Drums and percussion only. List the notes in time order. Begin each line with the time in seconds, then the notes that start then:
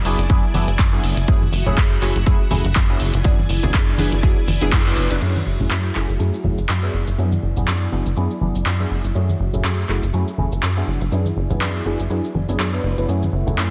0.05 open hi-hat
0.19 closed hi-hat, tambourine
0.30 kick, closed hi-hat, tambourine
0.44 tambourine
0.54 open hi-hat, high conga
0.68 closed hi-hat, tambourine
0.79 kick, clap, closed hi-hat, tambourine
0.93 tambourine
1.04 open hi-hat
1.17 closed hi-hat, tambourine
1.28 kick, closed hi-hat, tambourine
1.42 tambourine, high conga
1.53 open hi-hat
1.66 closed hi-hat, tambourine, low conga
1.77 kick, clap, closed hi-hat, tambourine
1.91 tambourine
2.02 clap, open hi-hat
2.16 closed hi-hat, tambourine
2.26 kick, closed hi-hat, tambourine
2.41 tambourine
2.51 open hi-hat, high conga, low conga
2.65 closed hi-hat, tambourine
2.75 kick, clap, closed hi-hat
2.90 tambourine
3.00 open hi-hat
3.14 closed hi-hat, tambourine
3.25 kick, closed hi-hat, tambourine
3.38 tambourine, high conga
3.49 open hi-hat
3.63 closed hi-hat, tambourine, high conga, low conga
3.73 kick, clap, closed hi-hat, tambourine
3.88 tambourine
3.98 open hi-hat, high conga
4.11 closed hi-hat, tambourine
4.23 kick, closed hi-hat, tambourine
4.36 tambourine
4.48 open hi-hat, high conga
4.61 closed hi-hat, tambourine
4.72 kick, clap, closed hi-hat, tambourine
4.87 tambourine
4.97 open hi-hat
5.11 closed hi-hat, tambourine
5.21 crash, shaker
5.35 tambourine, high conga, shaker
5.59 tambourine, low conga, shaker
5.70 clap, tambourine, shaker
5.84 shaker
5.95 clap
6.09 shaker
6.20 shaker
6.34 tambourine, shaker
6.44 high conga, low conga
6.58 tambourine, shaker
6.69 clap, shaker
6.83 shaker
7.07 shaker
7.18 shaker
7.32 tambourine, high conga, shaker
7.57 tambourine, low conga, shaker
7.68 clap, shaker
7.81 shaker
8.06 shaker
8.17 shaker
8.31 shaker
8.41 high conga
8.55 shaker
8.66 clap, tambourine, shaker
8.80 shaker
9.05 shaker
9.15 shaker
9.29 tambourine, high conga, shaker
9.53 tambourine, low conga, shaker
9.65 clap, shaker
9.78 shaker
9.89 clap
10.03 shaker
10.14 shaker
10.28 shaker
10.38 high conga, low conga
10.52 shaker
10.63 clap, tambourine, shaker
10.77 shaker
11.01 shaker
11.12 shaker
11.25 tambourine, high conga, shaker
11.50 tambourine, high conga, low conga, shaker
11.61 clap, tambourine, shaker
11.75 tambourine, shaker
11.99 shaker
12.11 shaker
12.24 shaker
12.35 high conga
12.49 shaker
12.60 clap, shaker
12.74 shaker
12.98 shaker
13.09 shaker
13.23 tambourine, high conga, shaker
13.47 tambourine, low conga, shaker
13.58 clap, shaker